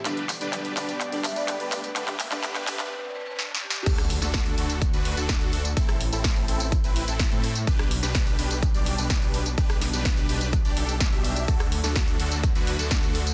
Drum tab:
CC |------------------------------------------------|------------------------------------------------|x-----------------------------------------------|------------------------------------------------|
HH |x--x--o--x--x--x--o--x--x--x--o--x--x--x--o--x--|x--x--o--x--x--x--o--x--------------------------|x--x--o--x--x--x--o--x--x--x--o--x--x--x--o--x--|x--x--o--x--x--x--o--x--x--x--o--x--x--x--o--x--|
TB |x-----x--x--x-----x--x--x-----x--x--x-----x--x--|x-----x--x--x--x--x--x--------------------------|x--x-----x--x--x-----x--x--x-----x--x--x-----x--|x--x-----x--x--x-----x--x--x-----x--x--x-----x--|
CP |x-----x-----x-----x-----x-----x-----x-----x-----|x--x--x--x--x--x--x--x--------------------------|------------------------------------------------|------------------------------------------------|
SD |------------------------------------------------|------------------------------------o---o---o---|---r-----o--o-----------------------o-----------|---r--------o-----------------------o-----------|
BD |------------------------------------------------|------------------------------------------------|o-----------o-----------o-----------o-----------|o-----------o-----------o-----------o-----------|

CC |------------------------------------------------|------------------------------------------------|------------------------------------------------|
HH |x--x--o--x--x--x--o--x--x--x--o--x--x--x--o--x--|x--x--o--x--x--x--o--x--x--x--o--x--x--x--o--x--|x--x--o--x--x--x--o--x--x--x--o--x--x--x--o--x--|
TB |x--x-----x--x--x-----x--x--x-----x--x--x-----x--|x--x-----x--x--x-----x--x--x-----x--x--x-----x--|x--x-----x--x--x-----x--x--x-----x-----x-----x--|
CP |------------------------------------------------|------------------------------------------------|------------------------------------------------|
SD |---r-----o--o-----------------------o-----------|---r--o-----o-----------------------o-----------|---r-----o--o-----------------------o-----------|
BD |o-----------o-----------o-----------o-----------|o-----------o-----------o-----------o-----------|o-----------o-----------o-----------o-----------|